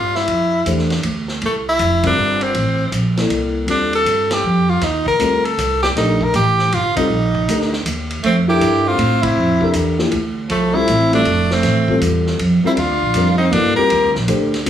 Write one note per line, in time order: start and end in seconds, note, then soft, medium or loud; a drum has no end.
0.00 0.27 G2 medium
0.00 0.17 F4 medium
0.15 0.66 E4 medium
0.15 snare soft
0.27 0.65 F2 medium
0.27 ride medium
0.65 1.03 E2 medium
0.65 0.88 A3 medium
0.65 0.89 D4 soft
0.65 0.89 G4 soft
0.65 0.89 C5 medium
0.65 hi-hat pedal soft
0.65 ride medium
0.78 snare soft
0.90 snare soft
0.90 ride soft
1.03 1.40 D2 medium
1.03 ride medium
1.28 snare soft
1.42 1.79 C2 medium
1.42 ride soft
1.46 1.56 A3 medium
1.69 2.03 E4 medium
1.79 2.16 F1 medium
1.79 hi-hat pedal medium
1.79 ride medium
2.03 2.53 G3 medium
2.03 2.52 C4 medium
2.03 2.44 D4 medium
2.03 2.53 F4 medium
2.03 2.53 A#4 medium
2.03 kick medium
2.03 ride medium
2.17 2.54 G1 medium
2.41 2.93 C4 medium
2.41 ride soft
2.55 2.91 A1 medium
2.55 ride medium
2.91 3.28 A#1 medium
2.91 hi-hat pedal soft
2.91 ride medium
3.17 3.66 A#3 medium
3.17 3.66 E4 medium
3.17 3.66 A4 medium
3.17 3.66 D5 medium
3.17 snare soft
3.17 ride soft
3.29 3.66 C2 medium
3.29 ride medium
3.66 4.04 D#2 medium
3.66 4.74 G3 medium
3.66 4.74 C4 soft
3.66 3.93 D4 medium
3.66 4.74 F4 soft
3.66 4.74 A4 medium
3.66 ride medium
3.93 4.35 A4 medium
3.93 ride soft
4.05 4.42 G2 medium
4.05 hi-hat pedal medium
4.05 ride medium
4.31 4.71 G4 medium
4.31 snare medium
4.31 ride medium
4.43 4.80 F2 medium
4.69 4.85 F4 medium
4.81 5.18 D#2 medium
4.81 5.07 D#4 medium
4.81 snare soft
4.81 ride medium
5.06 5.47 A#4 medium
5.06 kick soft
5.19 5.57 D2 medium
5.19 5.42 G3 medium
5.19 5.42 C4 medium
5.19 5.42 F4 medium
5.19 5.42 A4 medium
5.19 hi-hat pedal medium
5.19 ride medium
5.45 5.82 A4 medium
5.45 ride soft
5.58 5.94 C2 medium
5.58 hi-hat pedal medium
5.58 ride medium
5.83 5.88 G4 medium
5.83 snare medium
5.95 6.32 A#1 medium
5.95 6.18 A3 medium
5.95 6.18 D4 medium
5.95 6.25 D#4 medium
5.95 6.18 G4 medium
5.95 6.18 A#4 medium
5.95 snare soft
5.95 ride medium
6.21 6.35 A#4 medium
6.21 kick soft
6.34 6.70 A1 medium
6.34 6.75 G4 medium
6.34 hi-hat pedal soft
6.34 ride soft
6.59 snare soft
6.72 7.08 G1 medium
6.72 6.96 F4 medium
6.72 ride medium
6.96 7.08 G3 medium
6.96 7.08 C4 medium
6.96 7.81 D#4 medium
6.96 7.08 F4 medium
6.96 7.08 A4 medium
6.96 kick medium
6.96 ride medium
7.09 7.46 A#1 medium
7.35 kick soft
7.48 7.84 D2 medium
7.48 7.70 A3 medium
7.48 7.70 D4 medium
7.48 7.70 G4 soft
7.48 7.71 A#4 medium
7.48 hi-hat pedal medium
7.48 ride medium
7.61 snare soft
7.73 snare soft
7.86 8.22 D#2 medium
7.86 hi-hat pedal medium
7.86 ride medium
8.11 ride soft
8.23 8.60 F2 medium
8.23 8.34 A3 medium
8.23 8.36 C4 medium
8.23 ride medium
8.47 8.96 D4 medium
8.47 8.88 E4 medium
8.47 8.96 G4 medium
8.47 8.89 G4 medium
8.47 8.96 A4 medium
8.47 8.96 A#4 medium
8.60 8.97 G2 medium
8.60 hi-hat pedal soft
8.60 ride medium
8.87 9.21 C4 medium
8.87 9.23 F4 medium
8.98 9.35 A2 medium
8.98 ride medium
9.21 9.73 C4 medium
9.21 9.73 E4 medium
9.21 kick medium
9.21 ride medium
9.36 9.73 F2 medium
9.60 9.96 D4 medium
9.60 9.96 G4 medium
9.60 9.96 A4 medium
9.60 9.96 A#4 medium
9.60 kick soft
9.73 10.11 E2 medium
9.73 hi-hat pedal soft
9.73 ride medium
9.98 10.10 F3 medium
9.98 10.10 A#3 medium
9.98 10.11 E4 medium
9.98 10.11 G4 medium
9.98 snare soft
10.12 10.49 D2 medium
10.12 ride medium
10.49 10.87 C2 medium
10.49 10.76 F3 medium
10.49 10.76 A3 medium
10.49 ride medium
10.74 10.86 G3 medium
10.74 11.12 C4 medium
10.74 10.86 C4 medium
10.74 11.13 E4 medium
10.74 10.86 F4 medium
10.74 10.86 A4 medium
10.88 11.25 A1 medium
10.88 hi-hat pedal soft
10.88 ride medium
11.12 11.24 G3 medium
11.12 11.51 A3 medium
11.12 11.24 C4 medium
11.12 11.55 D4 medium
11.12 11.24 F4 medium
11.12 11.24 A4 medium
11.12 ride soft
11.25 11.63 F1 medium
11.25 ride medium
11.51 12.02 A3 medium
11.51 12.03 C4 medium
11.51 snare soft
11.63 12.00 A1 medium
11.63 snare soft
11.63 ride medium
11.88 12.37 G3 medium
11.88 12.37 C4 medium
11.88 12.37 F4 medium
11.88 12.37 A4 medium
11.88 kick soft
12.01 12.38 E2 medium
12.01 hi-hat pedal soft
12.01 ride medium
12.26 snare soft
12.39 12.62 F2 medium
12.39 ride medium
12.63 12.75 G3 medium
12.63 12.76 C4 medium
12.63 12.71 C4 medium
12.63 12.72 E4 medium
12.63 12.76 F4 medium
12.63 12.76 A#4 medium
12.63 muted upright bass stroke soft
12.75 12.90 D#2 medium
12.75 13.35 D4 medium
12.75 13.37 F4 medium
12.75 ride medium
12.90 13.01 D2 soft
13.02 13.14 A#1 medium
13.14 13.51 F2 medium
13.14 13.37 G3 medium
13.14 13.37 C4 medium
13.14 13.38 F4 soft
13.14 13.38 A#4 medium
13.14 hi-hat pedal soft
13.14 ride medium
13.38 13.52 C4 medium
13.38 13.53 D#4 medium
13.50 13.76 G2 medium
13.50 13.74 F#3 medium
13.50 13.76 A#3 medium
13.50 13.75 B3 medium
13.50 13.75 D4 medium
13.50 13.75 E4 soft
13.50 13.75 A4 medium
13.50 ride medium
13.76 14.10 G3 medium
13.76 14.10 C4 soft
13.76 14.10 F4 medium
13.76 14.12 G4 medium
13.76 14.12 A#4 medium
13.76 14.10 A#4 medium
13.76 muted upright bass stroke soft
13.90 14.04 D#2 medium
13.90 ride medium
14.04 14.15 D2 medium
14.15 14.27 A#1 medium
14.15 snare soft
14.27 14.65 D2 medium
14.27 14.50 A3 medium
14.27 14.50 D4 medium
14.27 14.51 G4 medium
14.27 14.51 C5 medium
14.27 hi-hat pedal soft
14.27 ride medium
14.54 snare soft
14.54 ride soft
14.66 14.70 G3 medium
14.66 14.70 C4 medium
14.66 14.70 F4 medium
14.66 14.70 A#4 medium
14.66 hi-hat pedal medium
14.66 ride medium